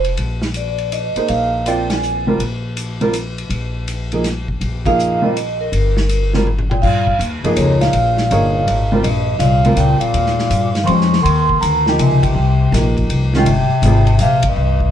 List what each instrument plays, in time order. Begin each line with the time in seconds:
Already playing: upright bass F1
0.04 ride
0.17 upright bass A#1, ride
0.42 snare
0.54 vibraphone D5, hi-hat pedal, ride
0.78 ride
0.92 vibraphone D#5, hi-hat pedal, ride
1.15 grand piano A#3 D#4 G#4 C5, muted upright bass stroke, ride
1.28 upright bass A#1, vibraphone F5, ride
1.66 grand piano C4 F4 A#4 D5, vibraphone G5, hi-hat pedal, ride
1.90 vibraphone G#5, snare, ride
2.03 hi-hat pedal
2.27 grand piano G3 C4 F4 A#4
2.39 upright bass A#1, ride
2.77 hi-hat pedal, ride
3.01 grand piano G3 C4 F4 A#4, ride
3.13 hi-hat pedal, ride
3.38 ride
3.49 upright bass A#1, ride
3.88 hi-hat pedal, ride
4.12 grand piano F3 A#3 D#4 G#4, ride
4.24 snare, hi-hat pedal, ride
4.48 kick
4.61 upright bass A#1, ride
4.86 grand piano F3 A#3 D#4 G#4, vibraphone F5, kick, ride
4.99 hi-hat pedal
5.22 grand piano G3 C4 F4 A#4, vibraphone D#5
5.37 hi-hat pedal, ride
5.61 vibraphone A#4
5.72 upright bass G1, ride
5.97 snare
6.09 hi-hat pedal, ride
6.33 grand piano G3 C4 F4 A#4, snare
6.47 mid tom
6.59 mid tom
6.70 bass clarinet A#2, vibraphone G5, mid tom
6.82 upright bass G2, bass clarinet A#2, vibraphone F5, kick, crash
7.07 kick
7.19 upright bass D#2, hi-hat pedal, ride
7.43 bass clarinet G2, grand piano F3 A#3 D#4 G#4, vibraphone D#5, muted upright bass stroke, ride
7.55 upright bass C#2, bass clarinet F2, vibraphone C#5, hi-hat pedal, ride
7.78 bass clarinet A#2, vibraphone F5, snare, ride
7.93 upright bass A#1, ride
8.17 snare
8.31 upright bass G1, grand piano A#3 D#4 G#4 C#5, hi-hat pedal, ride
8.67 upright bass G#1, ride
8.92 grand piano G3 C4 F4 A#4
9.00 upright bass A#1, bass clarinet G2, vibraphone D#5, ride
9.38 upright bass C2, bass clarinet A#2, vibraphone F5, hi-hat pedal, ride
9.65 grand piano G3 C4 F4 A#4, ride
9.75 upright bass C#2, bass clarinet A#2, vibraphone G5, hi-hat pedal, ride
9.99 bass clarinet A#2, vibraphone F5, ride
10.13 upright bass D#2, ride
10.26 snare
10.38 snare
10.50 upright bass G2, hi-hat pedal, ride
10.75 snare, ride
10.84 bass clarinet D#3 F3, vibraphone C6 C#6, ride
10.88 upright bass F2, grand piano G#3 C#4 G4 C5
11.01 snare
11.13 snare
11.22 upright bass D#2, bass clarinet D#3, vibraphone C6, ride
11.49 kick
11.60 upright bass D2, bass clarinet D#3, vibraphone A#5, hi-hat pedal, ride
11.86 grand piano F3 A#3 D#4 G4, snare
11.98 upright bass C#2, bass clarinet C3, vibraphone G#5, hi-hat pedal, ride
12.22 bass clarinet C3, vibraphone G5, kick, ride
12.35 upright bass C2
12.72 upright bass A#1, grand piano F3 A#3 D#4 G4, snare, hi-hat pedal, ride
12.97 kick, ride
13.09 upright bass C2, ride
13.34 bass clarinet C3, grand piano D#3 G#3 C#4 F4, snare
13.38 vibraphone G5
13.45 upright bass G1, ride
13.69 muted upright bass stroke
13.82 upright bass G#1, grand piano G3 C4 F4 G#4, hi-hat pedal, ride
14.07 ride
14.19 upright bass A#1, bass clarinet C3, vibraphone F5, hi-hat pedal, ride
14.43 bass clarinet G2, kick, ride
14.47 vibraphone D#5
14.56 upright bass C2
14.80 kick